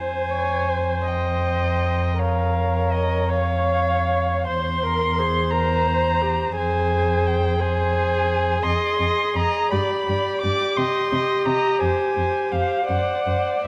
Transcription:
0.00 4.48 F2 soft
0.00 0.32 C5 soft
0.00 1.02 C5 soft
0.00 1.08 G#5 medium
0.30 0.70 C#5 soft
0.69 2.18 C5 soft
1.07 2.20 D#5 soft
1.07 2.20 G5 soft
2.19 3.31 A#4 soft
2.19 4.47 C#5 soft
2.19 2.94 F5 soft
2.92 3.30 D#5 medium
3.29 4.46 C#5 medium
3.29 4.47 F5 medium
4.46 6.57 E2 soft
4.46 4.84 C5 soft
4.46 4.85 C5 soft
4.46 5.53 C6 medium
4.83 5.20 A#4 soft
5.18 5.54 G#4 soft
5.18 6.58 C5 soft
5.51 5.89 A#4 soft
5.51 6.56 A#5 medium
5.88 6.23 C5 soft
6.22 6.57 G4 soft
6.56 8.59 F2 soft
6.56 7.61 G#4 soft
6.56 7.59 C5 soft
6.56 7.28 G#5 medium
7.26 7.63 G5 medium
7.60 8.62 G#4 soft
7.60 8.63 C5 medium
7.60 8.64 G#5 medium
8.63 8.71 F2 soft
8.63 9.73 G#4 medium
8.63 8.98 D#5 soft
8.63 9.37 C6 medium
8.99 9.08 F2 soft
8.99 9.34 D#5 soft
9.35 9.43 F2 soft
9.35 9.71 D#5 soft
9.35 9.73 A#5 medium
9.71 9.80 G2 soft
9.71 12.88 G4 medium
9.71 10.07 D5 soft
9.71 10.41 B5 medium
10.09 10.17 G2 soft
10.09 10.43 D5 soft
10.41 10.52 G2 soft
10.41 10.77 D5 soft
10.41 10.78 D6 medium
10.77 10.86 C3 soft
10.77 11.11 D#5 soft
10.77 11.47 C6 medium
11.12 11.20 C3 soft
11.12 11.47 D#5 soft
11.46 11.54 C3 soft
11.46 11.81 D#5 soft
11.46 11.82 A#5 medium
11.80 11.89 F2 soft
11.80 12.15 C5 soft
11.80 12.54 G#5 medium
12.16 12.25 F2 soft
12.16 12.51 C5 soft
12.51 12.60 F2 soft
12.51 12.86 C5 soft
12.51 12.88 F5 medium
12.86 12.97 F#2 soft
12.86 13.24 C5 soft
12.86 13.67 D5 soft
12.86 13.63 F#5 medium
13.26 13.35 F#2 soft
13.26 13.63 C5 soft
13.64 13.67 C5 soft

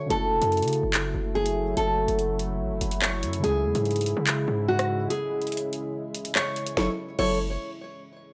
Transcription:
0.06 3.38 C#3 medium
0.06 3.39 A3 medium
0.10 0.33 F#1 loud
0.10 3.40 F#3 medium
0.10 3.40 A3 medium
0.10 6.73 E4 medium
0.10 3.41 E4 medium
0.10 1.31 A4 loud
0.10 closed hi-hat medium
0.15 3.42 F#4 medium
0.31 0.41 E1 loud
0.42 0.64 F#2 loud
0.42 closed hi-hat medium
0.52 closed hi-hat soft
0.57 closed hi-hat medium
0.62 0.82 C#3 loud
0.62 closed hi-hat medium
0.68 closed hi-hat medium
0.73 closed hi-hat medium
0.83 1.13 F#1 loud
0.94 clap loud
0.94 closed hi-hat medium
1.14 1.74 F#1 loud
1.35 1.74 G#4 medium
1.46 closed hi-hat medium
1.77 2.07 F#1 loud
1.77 2.98 A4 medium
1.77 closed hi-hat medium
2.08 2.62 F#1 loud
2.08 closed hi-hat medium
2.19 closed hi-hat medium
2.39 closed hi-hat medium
2.60 2.72 A1 loud
2.71 2.81 F#1 loud
2.81 3.24 F#1 loud
2.81 closed hi-hat medium
2.91 closed hi-hat medium
3.02 3.41 C#5 medium
3.02 clap loud
3.23 3.43 F#2 loud
3.23 closed hi-hat medium
3.33 closed hi-hat medium
3.40 6.71 C#3 medium
3.40 6.72 G#3 medium
3.44 3.66 C#2 loud
3.44 6.74 C#3 medium
3.44 6.74 G#3 medium
3.44 6.74 E4 medium
3.44 4.65 G#4 loud
3.44 closed hi-hat medium
3.48 6.75 G#4 medium
3.65 3.74 E2 loud
3.75 4.15 G#2 loud
3.75 closed hi-hat medium
3.85 closed hi-hat soft
3.91 closed hi-hat medium
3.96 closed hi-hat medium
4.01 closed hi-hat medium
4.06 closed hi-hat medium
4.17 4.47 C#3 loud
4.27 clap loud
4.27 closed hi-hat medium
4.48 5.08 G#2 loud
4.68 5.08 F#4 medium
4.79 cross-stick loud
4.79 closed hi-hat medium
5.10 6.31 G#4 medium
5.10 closed hi-hat medium
5.42 closed hi-hat soft
5.47 closed hi-hat medium
5.52 closed hi-hat medium
5.57 closed hi-hat medium
5.73 closed hi-hat medium
6.14 closed hi-hat medium
6.25 closed hi-hat medium
6.35 6.75 C#5 medium
6.35 clap loud
6.56 closed hi-hat medium
6.66 closed hi-hat medium
6.77 6.89 F#1 loud
6.77 6.89 F#3 medium
6.77 6.89 E4 medium
6.77 6.89 A4 loud
6.77 6.89 C#5 medium
6.77 snare medium
7.19 7.57 F#1 loud
7.19 7.38 F#3 medium
7.19 7.38 E4 medium
7.19 7.38 A4 medium
7.19 7.38 C#5 medium
7.19 crash medium

